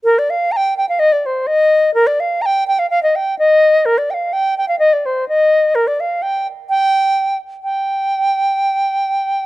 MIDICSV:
0, 0, Header, 1, 2, 480
1, 0, Start_track
1, 0, Key_signature, -2, "minor"
1, 0, Tempo, 473560
1, 51, Time_signature, 2, 2, 24, 8
1, 9588, End_track
2, 0, Start_track
2, 0, Title_t, "Flute"
2, 0, Program_c, 0, 73
2, 45, Note_on_c, 0, 70, 97
2, 189, Note_on_c, 0, 74, 79
2, 204, Note_off_c, 0, 70, 0
2, 305, Note_on_c, 0, 77, 80
2, 320, Note_off_c, 0, 74, 0
2, 525, Note_on_c, 0, 82, 89
2, 541, Note_off_c, 0, 77, 0
2, 574, Note_on_c, 0, 79, 97
2, 584, Note_off_c, 0, 82, 0
2, 780, Note_off_c, 0, 79, 0
2, 786, Note_on_c, 0, 79, 71
2, 893, Note_off_c, 0, 79, 0
2, 902, Note_on_c, 0, 77, 62
2, 1007, Note_on_c, 0, 75, 102
2, 1022, Note_off_c, 0, 77, 0
2, 1139, Note_on_c, 0, 74, 78
2, 1154, Note_off_c, 0, 75, 0
2, 1276, Note_on_c, 0, 72, 70
2, 1291, Note_off_c, 0, 74, 0
2, 1489, Note_on_c, 0, 75, 97
2, 1504, Note_off_c, 0, 72, 0
2, 1963, Note_off_c, 0, 75, 0
2, 1969, Note_on_c, 0, 70, 93
2, 2097, Note_on_c, 0, 74, 76
2, 2112, Note_off_c, 0, 70, 0
2, 2230, Note_on_c, 0, 77, 79
2, 2245, Note_off_c, 0, 74, 0
2, 2450, Note_on_c, 0, 82, 92
2, 2465, Note_off_c, 0, 77, 0
2, 2491, Note_on_c, 0, 79, 100
2, 2501, Note_off_c, 0, 82, 0
2, 2707, Note_off_c, 0, 79, 0
2, 2713, Note_on_c, 0, 79, 84
2, 2828, Note_on_c, 0, 77, 74
2, 2843, Note_off_c, 0, 79, 0
2, 2934, Note_off_c, 0, 77, 0
2, 2940, Note_on_c, 0, 77, 97
2, 3061, Note_off_c, 0, 77, 0
2, 3071, Note_on_c, 0, 75, 68
2, 3199, Note_on_c, 0, 79, 77
2, 3214, Note_off_c, 0, 75, 0
2, 3424, Note_off_c, 0, 79, 0
2, 3433, Note_on_c, 0, 75, 94
2, 3908, Note_on_c, 0, 70, 92
2, 3923, Note_off_c, 0, 75, 0
2, 4034, Note_on_c, 0, 74, 71
2, 4049, Note_off_c, 0, 70, 0
2, 4160, Note_on_c, 0, 79, 64
2, 4176, Note_off_c, 0, 74, 0
2, 4196, Note_on_c, 0, 77, 69
2, 4206, Note_off_c, 0, 79, 0
2, 4388, Note_on_c, 0, 79, 85
2, 4403, Note_off_c, 0, 77, 0
2, 4634, Note_off_c, 0, 79, 0
2, 4640, Note_on_c, 0, 79, 81
2, 4742, Note_off_c, 0, 79, 0
2, 4748, Note_on_c, 0, 77, 73
2, 4850, Note_off_c, 0, 77, 0
2, 4856, Note_on_c, 0, 75, 96
2, 4998, Note_on_c, 0, 74, 72
2, 5014, Note_off_c, 0, 75, 0
2, 5126, Note_on_c, 0, 72, 63
2, 5141, Note_off_c, 0, 74, 0
2, 5347, Note_off_c, 0, 72, 0
2, 5356, Note_on_c, 0, 75, 81
2, 5829, Note_on_c, 0, 70, 85
2, 5844, Note_off_c, 0, 75, 0
2, 5954, Note_on_c, 0, 74, 67
2, 5969, Note_off_c, 0, 70, 0
2, 6084, Note_on_c, 0, 77, 66
2, 6099, Note_off_c, 0, 74, 0
2, 6308, Note_on_c, 0, 79, 79
2, 6323, Note_off_c, 0, 77, 0
2, 6560, Note_off_c, 0, 79, 0
2, 6787, Note_on_c, 0, 79, 109
2, 7477, Note_off_c, 0, 79, 0
2, 7739, Note_on_c, 0, 79, 81
2, 9588, Note_off_c, 0, 79, 0
2, 9588, End_track
0, 0, End_of_file